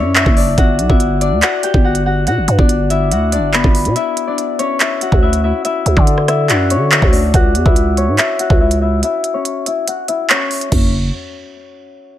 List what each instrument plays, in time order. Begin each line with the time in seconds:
Already playing: harp C#4 E4 F#4 C#5 E5
0.00 808-style bass F#2
0.16 harp E4 E5, clap
0.26 808-style bass F#1, kick
0.37 harp D4 D5, open hi-hat
0.57 808-style bass G1, harp F#4 F#5, kick, closed hi-hat
0.79 808-style bass B1, closed hi-hat
0.89 808-style bass G1, harp E4 E5, kick
1.00 closed hi-hat
1.21 harp D4 D5, closed hi-hat
1.32 808-style bass D2
1.42 harp F#4 F#5, clap, closed hi-hat
1.63 harp G4 G5, closed hi-hat
1.74 808-style bass G1, kick
1.84 harp F#4 F#5
1.95 closed hi-hat
2.06 harp F#4 F#5
2.27 808-style bass B2, harp F#4 F#5, closed hi-hat
2.37 808-style bass G1
2.48 808-style bass G2, closed hi-hat
2.59 808-style bass G1, harp D4 D5, kick
2.69 closed hi-hat
2.90 harp E4 E5, closed hi-hat
3.11 808-style bass D2, harp F#4 F#5, closed hi-hat
3.32 harp D4 D5, closed hi-hat
3.38 808-style bass G1
3.54 harp B3 B4, clap
3.64 808-style bass G1, kick
3.75 closed hi-hat, open hi-hat
3.85 808-style bass B2, closed hi-hat
3.96 harp E4 E5, closed hi-hat
4.17 closed hi-hat
4.27 harp D4 D5
4.38 closed hi-hat
4.59 harp C#4 C#5, closed hi-hat
4.80 harp E4 E5, clap, closed hi-hat
5.01 harp F#4 F#5, closed hi-hat
5.12 808-style bass D2, kick
5.22 harp E4 E5
5.33 closed hi-hat
5.44 harp E4 E5
5.65 harp E4 E5, closed hi-hat
5.86 808-style bass D2, closed hi-hat
5.96 808-style bass D3, harp D4 D5, kick
6.07 closed hi-hat
6.18 cross-stick
6.28 harp E4 E5, cross-stick, closed hi-hat
6.49 808-style bass F#2, harp F#4 F#5, clap, closed hi-hat
6.70 harp C#4 C#5, closed hi-hat
6.76 808-style bass D3
6.92 harp E4 E5, clap
7.02 808-style bass D2, kick
7.12 harp D4 D5, open hi-hat
7.34 808-style bass C#2, harp F#4 F#5, kick, closed hi-hat
7.55 808-style bass E2, closed hi-hat
7.65 808-style bass C#2, harp E4 E5, kick
7.76 closed hi-hat
7.97 harp C#4 C#5, closed hi-hat
8.08 808-style bass G#2
8.18 harp E4 E5, clap, closed hi-hat
8.39 harp F#4 F#5, closed hi-hat
8.50 808-style bass C#2, kick
8.61 harp E4 E5
8.71 closed hi-hat
8.82 harp E4 E5
9.03 harp E4 E5, closed hi-hat
9.24 closed hi-hat
9.34 harp C#4 C#5
9.45 closed hi-hat
9.66 harp E4 E5, closed hi-hat
9.88 harp F#4 F#5, closed hi-hat
10.08 harp E4 E5, closed hi-hat
10.30 harp C#4 C#5, clap
10.51 closed hi-hat, open hi-hat
10.61 closed hi-hat
10.72 808-style bass F#1, harp C#4, kick, floor tom, crash